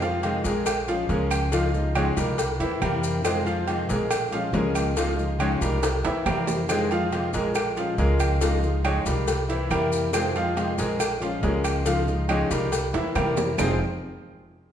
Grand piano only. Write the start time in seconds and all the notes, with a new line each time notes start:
0.02 F3 F4 F5
0.45 G#3 G#4 A#4
0.88 F3 F4 F5
1.09 G#3 G#4 A#4
1.53 F3 F4 F5
1.96 G#3 G#4 C#5
2.17 G3 G4 A#4
2.60 E3 E4 E5
2.82 G3 G4 A#4
3.25 G#3 G#4 C5
3.46 F3 F4 F5
3.89 G#3 G#4 A#4
4.33 F3 F4 F5
4.54 G#3 G#4 A#4
4.97 F3 F4 F5
5.40 G#3 G#4 C#5
5.62 G3 G4 A#4
6.05 E3 E4 E5
6.26 G3 G4 A#4
6.69 G#3 G#4 C5
6.91 F3 F4 F5
7.34 G#3 G#4 A#4
7.77 F3 F4 F5
7.98 G#3 G#4 A#4
8.41 F3 F4 F5
8.85 G#3 G#4 C#5
9.06 G3 G4 A#4
9.50 E3 E4 E5
9.71 G3 G4 A#4
10.14 G#3 G#4 C5
10.36 F3 F4 F5
10.79 G#3 G#4 A#4
11.22 F3 F4 F5
11.43 G#3 G#4 A#4
11.86 F3 F4 F5
12.29 G#3 G#4 C#5
12.51 G3 G4 A#4
12.94 E3 E4 E5
13.16 G3 G4 A#4
13.58 F3 C4 D#4 F4 G#4 C5